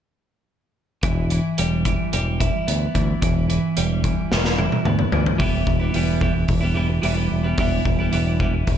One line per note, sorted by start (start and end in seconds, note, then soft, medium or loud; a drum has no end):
1.03 1.39 E1 medium
1.03 1.31 E3 medium
1.03 kick medium
1.03 closed hi-hat medium
1.30 1.86 E3 soft
1.30 closed hi-hat soft
1.58 1.95 E1 medium
1.58 2.13 G3 medium
1.58 closed hi-hat medium
1.85 2.94 E3 soft
1.85 kick medium
1.85 closed hi-hat medium
2.13 2.49 E1 medium
2.13 3.49 G3 medium
2.13 closed hi-hat medium
2.40 3.76 E4 medium
2.40 kick medium
2.40 closed hi-hat medium
2.68 2.86 D2 medium
2.68 4.04 B3 soft
2.68 closed hi-hat medium
2.95 3.13 D2 medium
2.95 3.21 E3 medium
2.95 kick medium
2.95 closed hi-hat medium
3.22 3.58 E1 medium
3.22 3.48 E3 medium
3.22 kick medium
3.22 closed hi-hat medium
3.49 4.03 E3 medium
3.49 closed hi-hat medium
3.77 4.13 E1 medium
3.77 4.31 G3 medium
3.77 closed hi-hat medium
4.04 5.11 E3 medium
4.04 kick medium
4.04 closed hi-hat soft
4.32 4.67 E1 medium
4.32 5.38 G3 medium
4.32 snare soft
4.45 snare soft
4.58 5.40 E4 medium
4.58 high tom medium
4.72 high tom soft
4.85 5.03 D2 medium
4.85 5.39 B3 medium
4.85 mid tom medium
4.99 mid tom medium
5.12 5.30 D2 medium
5.12 5.37 E3 medium
5.12 floor tom medium
5.26 floor tom medium
5.38 5.66 E1 medium
5.38 5.93 E3 medium
5.38 5.82 G3 medium
5.38 5.81 B3 medium
5.38 5.79 E4 medium
5.38 kick medium
5.38 open hi-hat soft
5.67 5.93 E1 medium
5.67 kick medium
5.80 5.95 G3 soft
5.80 5.95 B3 medium
5.80 5.96 E4 medium
5.94 6.46 E1 medium
5.94 6.20 E3 medium
5.94 6.21 G3 medium
5.94 6.22 B3 medium
5.94 6.23 E4 medium
5.94 open hi-hat soft
6.20 6.74 E3 medium
6.20 6.35 G3 medium
6.20 6.34 B3 medium
6.20 6.34 E4 medium
6.20 kick medium
6.34 muted clean electric guitar stroke soft
6.48 7.01 E1 medium
6.48 kick medium
6.48 open hi-hat soft
6.61 6.75 G3 soft
6.61 6.75 B3 soft
6.61 6.77 E4 medium
6.74 7.01 E3 medium
6.74 6.89 G3 medium
6.74 6.89 B3 medium
6.74 6.88 E4 medium
6.89 muted clean electric guitar stroke soft
7.02 7.30 E1 medium
7.02 7.57 E3 medium
7.02 7.18 G3 medium
7.02 7.16 B3 medium
7.02 7.15 E4 medium
7.02 open hi-hat soft
7.15 7.46 G3 soft
7.15 7.43 B3 medium
7.15 7.43 E4 medium
7.32 7.57 E1 medium
7.43 7.59 G3 soft
7.43 7.59 B3 medium
7.43 7.60 E4 medium
7.58 7.84 E1 medium
7.58 8.11 E3 medium
7.58 8.01 G3 medium
7.58 7.99 B3 medium
7.58 7.98 E4 medium
7.58 kick medium
7.58 open hi-hat soft
7.85 8.11 E1 medium
7.85 kick medium
7.99 8.12 G3 soft
7.99 8.13 B3 medium
7.99 8.14 E4 medium
8.12 8.65 E1 medium
8.12 8.39 E3 medium
8.12 8.40 G3 medium
8.12 8.41 B3 medium
8.12 8.43 E4 medium
8.12 open hi-hat soft
8.40 8.78 E3 medium
8.40 8.54 G3 medium
8.40 8.53 B3 medium
8.40 8.53 E4 medium
8.40 kick medium
8.54 muted clean electric guitar stroke soft
8.67 8.78 E1 medium
8.67 kick medium
8.67 open hi-hat soft